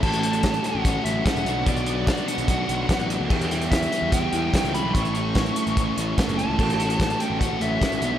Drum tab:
CC |x---------------|----------------|x---------------|----------------|
HH |-xxxxxx-x-x-xxx-|xxx-xxxxx-x-xxx-|-xxxxxx-x-x-xxx-|xxx-xxxxx-x-xxx-|
SD |----o-------o---|----o-------o---|----o-------o---|----o-------o---|
BD |o---o---o---o---|o---o---o---o---|o---o---o---o---|o---o---o---o---|

CC |x---------------|
HH |-xxxxxx-x-x-xxx-|
SD |----o-------o---|
BD |o---o---o---o---|